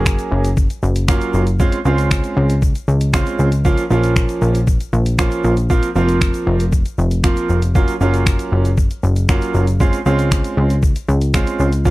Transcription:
Already playing: F#1 F#3 A#3 C#4 G#4
0.06 finger snap, kick, shaker
0.19 closed hi-hat, shaker
0.32 F#1
0.44 closed hi-hat, shaker
0.57 kick, shaker
0.70 closed hi-hat, shaker
0.83 F#1, shaker
0.95 closed hi-hat, shaker
1.08 F#3 A#3 C#4 F4, finger snap, kick, shaker
1.21 closed hi-hat, shaker
1.34 F#1, shaker
1.47 closed hi-hat, shaker
1.60 G#3 C4 C#4 F4, kick, shaker
1.72 closed hi-hat, shaker
1.85 C#2 G#3 C4 C#4 F4, shaker
1.98 closed hi-hat, shaker
2.11 finger snap, kick, shaker
2.24 closed hi-hat, shaker
2.37 C#2
2.50 closed hi-hat, shaker
2.62 kick, shaker
2.75 closed hi-hat, shaker
2.88 C#2, shaker
3.01 closed hi-hat, shaker
3.13 G#3 C4 C#4 F4, finger snap, kick, shaker
3.26 closed hi-hat, shaker
3.39 C#2, shaker
3.52 closed hi-hat, shaker
3.65 F3 A#3 C#4 F4, kick, shaker
3.78 closed hi-hat, shaker
3.90 A#1 F3 A#3 C#4 F4, shaker
4.03 closed hi-hat, shaker
4.16 finger snap, kick, shaker
4.29 closed hi-hat, shaker
4.42 A#1, shaker
4.55 closed hi-hat, shaker
4.67 kick, shaker
4.80 closed hi-hat, shaker
4.93 A#1, shaker
5.06 closed hi-hat, shaker
5.18 F3 A#3 C#4 F4, finger snap, kick, shaker
5.31 closed hi-hat, shaker
5.44 A#1, shaker
5.57 closed hi-hat, shaker
5.70 F3 A#3 C4 F4, kick, shaker
5.83 closed hi-hat, shaker
5.95 F1 F3 A#3 C4 F4, shaker
6.08 closed hi-hat, shaker
6.21 finger snap, kick, shaker
6.34 closed hi-hat, shaker
6.47 F1
6.60 closed hi-hat, shaker
6.72 kick, shaker
6.85 closed hi-hat, shaker
6.98 F1, shaker
7.11 closed hi-hat, shaker
7.24 F3 A#3 C4 F4, finger snap, kick, shaker
7.37 closed hi-hat, shaker
7.49 F1, shaker
7.62 closed hi-hat, shaker
7.75 F#3 A#3 C#4 F4, kick, shaker
7.88 closed hi-hat, shaker
8.01 F#1 F#3 A#3 C#4 F4, shaker
8.14 closed hi-hat, shaker
8.26 finger snap, kick, shaker
8.39 closed hi-hat, shaker
8.52 F#1
8.65 closed hi-hat, shaker
8.78 kick, shaker
8.91 closed hi-hat, shaker
9.03 F#1, shaker
9.16 closed hi-hat, shaker
9.29 F#3 A#3 C#4 F4, finger snap, kick, shaker
9.42 closed hi-hat, shaker
9.54 F#1, shaker
9.67 closed hi-hat, shaker
9.80 G#3 C4 C#4 F4, kick, shaker
9.93 closed hi-hat, shaker
10.06 C#2 G#3 C4 C#4 F4, shaker
10.19 closed hi-hat, shaker
10.31 finger snap, kick, shaker
10.44 closed hi-hat, shaker
10.57 C#2
10.70 closed hi-hat, shaker
10.83 kick, shaker
10.96 closed hi-hat, shaker
11.09 C#2, shaker
11.21 closed hi-hat, shaker
11.34 G#3 C4 C#4 F4, finger snap, kick, shaker
11.47 closed hi-hat, shaker
11.59 C#2, shaker
11.72 closed hi-hat, shaker
11.85 F3 A#3 C#4 F4, kick, shaker

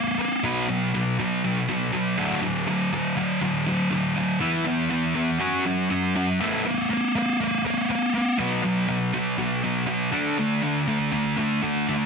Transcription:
Already playing: A3 B3
0.18 A3 B3
0.44 B2 F#3 B3
0.69 B2 F#3
0.94 B2 F#3
1.19 B2 F#3
1.44 B2 F#3
1.68 B2 F#3
1.93 B2 F#3
2.18 D3 F#3 A3
2.42 D3 F#3
2.67 D3 F#3
2.92 D3 F#3
3.17 D3 F#3
3.41 D3 F#3
3.66 D3 F#3
3.91 D3 F#3
4.16 D3 F#3
4.40 E3 B3 E4
4.65 E3 B3
4.91 E3 B3
5.15 E3 B3
5.39 F#3 C#4 F#4
5.65 F#3 C#4
5.90 F#3 C#4
6.16 F#3 C#4
6.40 A3 B3 E4
6.65 A3 B3
6.90 A3 B3
7.15 A3 B3
7.40 A3 B3
7.65 A3 B3
7.90 A3 B3
8.14 A3 B3
8.38 B2 F#3 B3
8.63 B2 F#3
8.88 B2 F#3
9.13 B2 F#3
9.38 B2 F#3
9.63 B2 F#3
9.87 B2 F#3
10.12 D3 A3 D4
10.38 D3 A3
10.62 D3 A3
10.87 D3 A3
11.12 D3 A3
11.37 D3 A3
11.63 D3 A3
11.89 D3 A3

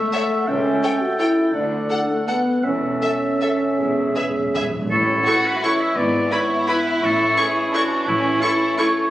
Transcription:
Already playing: A3 A4 E5
0.13 A4 C#5 E5 F#5
0.47 C#2 C#4 A4 E5 G5
0.82 A4 C#5 G5
1.01 F#4
1.19 E4 A4 C#5 G5
1.53 D2 D4 D5 F#5
1.89 A4 F#5
2.09 A3
2.27 B3 A4 F#5
2.64 E1 E2 C#4 A4 E5
3.02 A4 E5
3.41 A4 E5
3.79 E1 E2 G#4
3.87 E2
3.95 E2
4.02 E2
4.10 E2
4.16 E2 G#4 B4 E5
4.27 E2
4.36 E2
4.44 E2
4.52 E2 G#4 B4 E5
4.60 E2
4.68 E2
4.76 E2
4.83 E2
4.91 A1 A2 E3 C#4 E4 A4 C#6
5.26 E4 F#4 A4 C#6
5.46 B4
5.62 E4 A4 C#5 C#6
5.81 E5
5.96 G#1 G#2 B3 E4 D5 B5
6.31 E4 B4 C#5 B5
6.68 E4 B4 B5
7.02 A1 A2 E3 C#4 E4 A4 C#6
7.37 E4 G#4 A4 C#6
7.73 D4 E4 F#4 A4 C#6
8.07 A1 A2 C#4 E4 C#6
8.42 E4 A4 C#6
8.78 A3 E4 A4 C#5 C#6

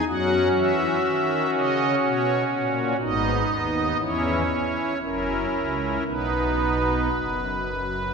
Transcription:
0.07 F#2 F#3 C#4 F#4 F#5
0.56 E3 E5
1.05 D#3
1.54 C#3 D#5
2.03 B2 C#5
2.52 A#2
3.01 G#1 G#2 B3 D#4 D#5
3.51 D#2
4.00 E2 E3 C#4 E4 C#5
4.51 E4
5.02 F#1 F#2 C#4 E4 A#4
5.54 C#2
6.06 B1 B2 B3 D#4 B4
7.12 F#1 F#2

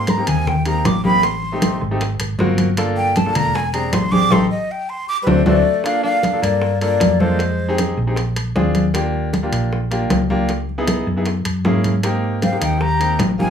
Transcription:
Already playing: G#2 C6
0.07 A#5, high bongo, high conga, high timbale, low timbale
0.18 A#3 C4 D#4 G4
0.27 D#2 G#5, high bongo, low conga, high timbale
0.47 G5, high bongo, high conga, low conga
0.65 A#3 C4 D#4 G4 A#5, high bongo, high conga, high timbale
0.85 A1 D6, high bongo, low bongo, high conga, high timbale, low timbale
1.04 A#3 C4 D#4 G4 B5, high bongo, high conga
1.23 C6, high bongo, high conga, high timbale
1.43 high conga
1.52 A3 C4 D#4 G4
1.62 high bongo, high conga, high timbale, low timbale
1.81 G#1, high bongo, high conga
1.91 A3 C4 D#4 G4
2.01 high bongo, high conga, high timbale
2.20 G#1, high bongo, high conga, high timbale
2.39 G1 A#3 C4 F4 F#4, high bongo, low bongo, high conga, low timbale
2.58 high bongo, high conga, high timbale
2.77 A#3 D4 F4 A4, high bongo, high conga, high timbale
2.97 G5, high conga
3.16 A5, high bongo, high conga, high timbale, low timbale
3.26 A#3 D4 F4 A4
3.35 E1 A#5, high bongo, low conga, high timbale
3.55 G#5, high bongo, high conga
3.73 C4 D4 G4 G#4 A#5, high bongo, high conga, high timbale
3.92 A1 C6, high bongo, low bongo, high conga, high timbale, low timbale
4.12 C4 D4 G4 G#4 D6, high bongo, high conga
4.31 A1 D#4 G4 A4 C6, low bongo, high conga, high timbale
4.51 D#5
4.71 G5
4.89 C6
5.08 D6
5.23 G3 B4, high timbale
5.27 D2 A3 C4 D4 F#4 C5, low bongo, high conga
5.46 D2 A3 C4 D4 F#4 D5, low bongo, high conga, high timbale
5.84 A#3 D4 F4 A4 F5, high bongo, high conga, high timbale
6.03 D4 F5, high conga
6.23 high bongo, high conga, high timbale, low timbale
6.33 A#3 D4 F4 A4
6.42 G2 A#3 D5, high bongo, high timbale
6.62 high bongo, high conga
6.81 A#3 D4 F4 A4 D5, high bongo, high conga, high timbale
7.00 F2, high bongo, low bongo, high conga, high timbale, low timbale
7.20 G#3 A#3 D4 F4 A4 C5, high bongo, high conga
7.39 high bongo, high conga, high timbale
7.60 high conga
7.69 C4 D#4 G4 G#4
7.78 high bongo, high conga, high timbale, low timbale
7.97 A#1, high bongo, high conga
8.07 C4 D#4 G4 G#4
8.16 high bongo, high conga, high timbale
8.36 high bongo, high conga, high timbale
8.56 D#2 C4 D4 F4 G#4, high bongo, low bongo, high conga, low timbale
8.75 high bongo, high conga, high timbale
8.94 A#3 D4 F4 G4, high bongo, high conga, high timbale
9.14 high conga
9.33 high bongo, high conga, high timbale, low timbale
9.43 A#3 D4 F4 G4
9.52 A#1, high bongo, high timbale
9.72 high bongo, high conga
9.91 A#3 D4 F4 G4, high bongo, high conga, high timbale
10.10 C#2, high bongo, low bongo, high conga, high timbale, low timbale
10.30 A#3 D4 F4 G4, high bongo, high conga
10.49 high bongo, high timbale
10.69 high conga
10.78 B3 D#4 E4 G#4
10.88 high bongo, high conga, high timbale, low timbale
11.07 F#2, high bongo, high conga
11.16 B3 D#4 E4 G#4
11.26 high bongo, high conga, high timbale
11.45 F#2, high bongo, high conga, high timbale
11.65 G#2 A#3 C#4 E4 G#4, high bongo, low bongo, high conga, low timbale
11.84 high bongo, high conga, high timbale
12.03 A#3 C4 D#4 G4, high bongo, high conga, high timbale
12.24 high conga
12.42 C4 F5, high bongo, high conga, high timbale, low timbale
12.52 A#3 C4 D#4 G4
12.60 D#2 D#4 G5, high bongo, high timbale
12.79 G4 A#5, high bongo, high conga
13.00 A#3 C4 D#4 G4, high bongo, high conga, high timbale
13.19 A1, high bongo, low bongo, high conga, high timbale, low timbale
13.39 A#3 C4 D#4 F4 G4 G#5, high bongo, high conga

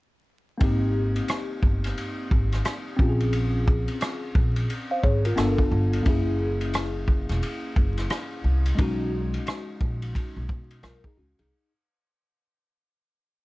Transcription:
0.57 G#1 A#3 C4, kick, ride
0.62 D#4 G4
1.16 ride
1.28 cross-stick, hi-hat pedal, ride
1.63 G1, kick
1.84 cross-stick, ride
1.98 ride
2.31 G#1, kick
2.52 cross-stick, ride
2.65 cross-stick, hi-hat pedal, ride
2.96 A#1 C4 C#4, kick
3.01 F4 G4
3.09 G#4
3.20 ride
3.33 ride
3.68 kick
3.88 ride
4.01 cross-stick, hi-hat pedal, ride
4.35 A#1, kick
4.56 ride
4.70 ride
4.91 C5 F5
5.03 G#1 G#4 C#5, kick
5.25 F4 A#4, ride
5.36 G1 B3 D4 F4 A4, cross-stick, hi-hat pedal, ride
5.58 kick
5.72 G1
5.93 ride
6.03 F#1 A#3 C#4 E4, kick, ride
6.09 G#4
6.61 ride
6.74 cross-stick, hi-hat pedal, ride
7.08 kick
7.29 E1, cross-stick, ride
7.43 ride
7.76 F#1, kick
7.97 cross-stick, ride
8.10 cross-stick, hi-hat pedal, ride
8.44 C2
8.66 ride
8.75 B1 G#3 C#4 D#4, kick, ride
8.81 F#4
9.34 ride
9.47 cross-stick, hi-hat pedal, ride
9.81 A#1, kick
10.02 ride
10.15 kick, ride
10.37 B1
10.49 B2, kick
10.71 ride
10.83 B1 F4 A#4, cross-stick, hi-hat pedal, ride
11.04 D#4 G#4, kick
11.17 C#2 C#4 F#4
11.39 C2 D#4 G#4, ride

